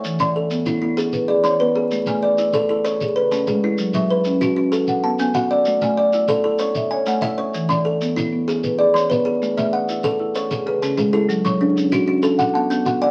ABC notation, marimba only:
X:1
M:12/8
L:1/8
Q:3/8=128
K:A
V:1 name="Marimba"
z d3 z3 B d c3 | z g3 z3 G B A,3 | z e3 z3 f a g3 | z g3 z3 e g f3 |
z d3 z3 B d c3 | z e3 z3 G B3 G- | G c3 z3 f a3 f |]
V:2 name="Marimba"
E,2 z B,2 B,2 z G2 B,2 | A,2 z E2 E z2 C,2 G,2 | F,2 z C2 C z2 B,2 F2 | A,2 z E2 E2 z c2 E2 |
E,2 z B,2 B,2 z G2 B,2 | A,2 z E2 E z2 C,2 G,2 | F,2 z C2 C z2 B,2 F2 |]